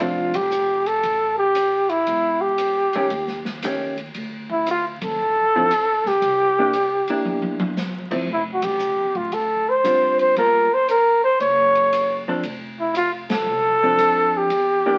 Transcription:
0.00 0.99 F1 medium
0.00 0.31 F3 soft
0.00 0.32 C4 soft
0.00 0.32 D4 soft
0.00 0.37 F4 medium
0.00 0.32 A4 medium
0.00 kick soft
0.00 ride medium
0.34 0.89 G4 medium
0.34 kick medium
0.34 ride medium
0.51 hi-hat pedal medium
0.86 1.38 A4 medium
0.86 ride soft
1.03 2.03 A1 medium
1.03 kick soft
1.03 ride soft
1.38 1.91 G4 medium
1.55 hi-hat pedal medium
1.55 ride medium
1.89 2.43 E4 medium
1.89 ride soft
2.07 2.90 E1 medium
2.07 kick soft
2.07 ride soft
2.41 3.45 G4 medium
2.58 hi-hat pedal soft
2.58 ride medium
2.93 3.10 D#3 medium
2.93 3.10 A3 medium
2.93 3.10 C#4 medium
2.93 3.10 G4 medium
2.93 muted upright bass stroke soft
2.93 ride soft
3.10 4.10 D#2 medium
3.10 kick soft
3.10 ride soft
3.27 snare soft
3.45 snare soft
3.62 3.95 D#3 soft
3.62 3.95 A3 medium
3.62 3.95 C#4 medium
3.62 3.95 G4 medium
3.62 hi-hat pedal medium
3.62 ride medium
3.97 ride soft
4.14 4.97 D2 medium
4.14 kick soft
4.14 ride soft
4.50 4.66 E4 medium
4.50 kick soft
4.66 hi-hat pedal medium
4.66 ride medium
4.71 4.85 F4 medium
5.01 5.17 D#2 medium
5.01 6.09 A4 medium
5.01 kick medium
5.01 ride medium
5.18 6.01 A1 medium
5.56 5.70 D3 medium
5.56 5.70 F3 medium
5.56 5.70 C4 medium
5.56 5.70 E4 medium
5.71 hi-hat pedal medium
5.71 ride medium
6.04 6.20 B1 medium
6.04 7.62 G4 medium
6.04 snare soft
6.21 7.04 C2 medium
6.21 kick soft
6.21 ride medium
6.59 6.73 A#3 medium
6.59 6.73 D4 medium
6.59 6.73 E4 soft
6.73 hi-hat pedal soft
6.73 ride soft
7.07 7.75 A#3 soft
7.07 7.75 D4 medium
7.07 7.75 E4 medium
7.07 muted upright bass stroke soft
7.07 ride soft
7.25 8.25 G1 medium
7.25 high tom soft
7.42 high tom soft
7.60 high tom medium
7.77 snare medium
7.77 hi-hat pedal medium
8.11 8.27 F3 medium
8.11 8.27 A3 medium
8.11 8.27 C4 medium
8.11 8.27 E4 medium
8.11 kick medium
8.11 crash soft
8.28 8.93 F1 medium
8.28 kick soft
8.33 8.43 E4 medium
8.54 8.66 F#4 medium
8.62 9.18 G4 medium
8.62 kick medium
8.62 ride medium
8.79 hi-hat pedal soft
8.98 9.14 E2 medium
9.15 9.31 A2 medium
9.15 9.35 F4 medium
9.15 kick medium
9.32 10.32 D2 medium
9.32 9.71 A4 medium
9.32 kick soft
9.32 ride soft
9.69 10.20 C5 medium
9.84 10.36 D3 medium
9.84 10.35 G3 medium
9.84 10.37 C4 medium
9.84 10.37 F4 soft
9.84 hi-hat pedal medium
9.84 ride medium
10.19 10.36 C5 medium
10.19 ride soft
10.36 11.36 G1 medium
10.36 10.68 G3 medium
10.36 10.68 A#3 medium
10.36 10.69 F4 medium
10.36 10.69 A4 medium
10.36 10.75 A#4 medium
10.36 kick soft
10.36 ride soft
10.74 10.89 C5 medium
10.88 11.21 A#4 medium
10.88 hi-hat pedal medium
10.88 ride medium
11.24 11.39 C5 medium
11.40 12.39 F#1 medium
11.40 12.23 C#5 loud
11.40 kick soft
11.40 ride soft
11.75 ride soft
11.93 hi-hat pedal medium
11.93 ride medium
12.28 12.42 F3 medium
12.28 12.42 C4 medium
12.28 12.43 D4 medium
12.28 12.43 A4 medium
12.43 13.43 F1 medium
12.43 kick soft
12.43 ride medium
12.80 12.95 E4 medium
12.95 13.12 F4 medium
12.95 hi-hat pedal soft
12.95 ride medium
13.30 14.39 A4 loud
13.30 snare medium
13.30 ride medium
13.47 13.95 C2 medium
13.83 14.47 F3 soft
13.83 14.48 C4 medium
13.83 14.48 D4 soft
13.83 14.48 A4 soft
13.98 14.46 F2 medium
13.98 hi-hat pedal soft
13.98 ride medium
14.37 14.98 G4 medium
14.50 14.98 E2 medium
14.50 kick soft
14.50 ride medium
14.86 14.98 E3 medium
14.86 14.98 A#3 medium
14.86 14.98 D4 medium
14.86 14.98 G4 medium

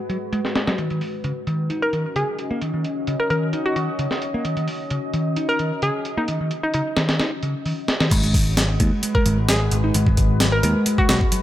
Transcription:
0.00 0.75 G#3 medium
0.00 8.07 F#4 medium
0.00 0.75 B4 medium
0.09 0.16 F#3 medium
0.09 closed hi-hat medium
0.32 0.39 G#3 medium
0.32 closed hi-hat medium
0.45 snare soft
0.56 snare loud
0.56 closed hi-hat medium
0.67 0.77 F#3 medium
0.67 snare medium
0.67 closed hi-hat medium
0.78 0.89 D#3 medium
0.78 8.08 C#4 medium
0.78 8.08 D#5 medium
0.78 closed hi-hat medium
0.90 1.00 D#3 medium
0.90 closed hi-hat soft
1.01 open hi-hat medium
1.24 1.31 C#3 medium
1.24 closed hi-hat medium
1.47 1.69 D#3 medium
1.47 closed hi-hat medium
1.70 1.92 D#4 medium
1.70 closed hi-hat medium
1.82 1.96 A#4 medium
1.93 2.04 D#3 medium
1.93 closed hi-hat medium
2.16 2.22 C#3 medium
2.16 2.51 G#4 medium
2.16 closed hi-hat medium
2.39 closed hi-hat medium
2.51 2.60 A#3 medium
2.62 2.73 D#3 medium
2.62 closed hi-hat medium
2.74 2.83 D#3 medium
2.85 closed hi-hat medium
3.07 3.14 C#3 medium
3.07 closed hi-hat medium
3.20 3.27 A#4 medium
3.30 3.52 D#3 medium
3.30 3.38 A#4 medium
3.30 closed hi-hat medium
3.53 3.75 D#4 medium
3.53 closed hi-hat medium
3.66 3.73 F#4 medium
3.76 3.87 D#3 medium
3.76 3.84 F#4 medium
3.76 closed hi-hat medium
3.99 4.05 C#3 medium
3.99 closed hi-hat medium
4.11 snare soft
4.22 closed hi-hat medium
4.34 4.44 A#3 medium
4.45 4.56 D#3 medium
4.45 closed hi-hat medium
4.57 4.67 D#3 medium
4.57 closed hi-hat soft
4.68 open hi-hat medium
4.90 4.97 C#3 medium
4.90 closed hi-hat medium
5.14 5.36 D#3 medium
5.14 closed hi-hat medium
5.36 5.58 D#4 medium
5.36 closed hi-hat medium
5.49 5.62 A#4 medium
5.59 5.70 D#3 medium
5.59 closed hi-hat medium
5.82 5.89 C#3 medium
5.82 6.18 G#4 medium
5.82 closed hi-hat medium
6.05 closed hi-hat medium
6.17 6.27 A#3 loud
6.17 6.31 D#4 medium
6.28 6.39 D#3 medium
6.28 closed hi-hat medium
6.41 6.50 D#3 medium
6.51 closed hi-hat medium
6.63 6.70 D#4 medium
6.74 6.81 C#3 medium
6.74 6.82 D#4 medium
6.74 closed hi-hat medium
6.97 7.19 D#3 medium
6.97 snare loud
6.97 closed hi-hat medium
7.09 snare loud
7.09 closed hi-hat medium
7.20 7.31 D#4 medium
7.20 snare loud
7.20 closed hi-hat medium
7.43 7.53 C#3 medium
7.43 closed hi-hat medium
7.66 7.72 D#3 medium
7.66 open hi-hat medium
7.88 snare loud
7.88 closed hi-hat medium
8.00 8.10 D#3 medium
8.00 snare medium
8.00 closed hi-hat medium
8.11 8.76 G#1 loud
8.11 8.22 G#3 medium
8.11 11.43 G#3 medium
8.11 11.43 F#4 medium
8.11 11.43 B4 medium
8.11 kick loud
8.11 closed hi-hat medium
8.11 crash medium
8.23 8.33 G#3 medium
8.23 closed hi-hat soft
8.34 kick loud
8.34 open hi-hat medium
8.57 8.64 F#3 medium
8.57 snare loud
8.57 closed hi-hat medium
8.80 8.90 D#2 loud
8.80 9.02 G#3 loud
8.80 kick loud
8.80 closed hi-hat medium
9.03 9.25 G#3 medium
9.03 closed hi-hat medium
9.15 9.28 A#4 medium
9.15 kick medium
9.26 9.68 G#1 medium
9.26 9.37 G#3 medium
9.26 closed hi-hat medium
9.49 9.55 F#3 medium
9.49 9.84 G#4 medium
9.49 snare loud
9.49 closed hi-hat medium
9.71 9.90 G#1 medium
9.71 closed hi-hat medium
9.84 9.93 D#4 loud
9.94 10.60 G#1 medium
9.94 10.06 G#3 medium
9.94 closed hi-hat medium
10.07 10.16 G#3 medium
10.07 kick loud
10.17 kick loud
10.17 closed hi-hat medium
10.40 10.47 F#3 medium
10.40 snare loud
10.40 closed hi-hat medium
10.52 10.59 A#4 medium
10.63 10.73 D#2 loud
10.63 10.85 G#3 medium
10.63 10.71 A#4 medium
10.63 closed hi-hat medium
10.86 11.08 G#3 medium
10.86 closed hi-hat medium
10.98 11.05 F#4 medium
10.98 kick medium
11.09 11.19 B1 medium
11.09 11.20 G#3 medium
11.09 11.17 F#4 medium
11.09 snare loud
11.09 closed hi-hat medium
11.21 kick loud
11.32 11.38 F#3 medium
11.32 closed hi-hat medium

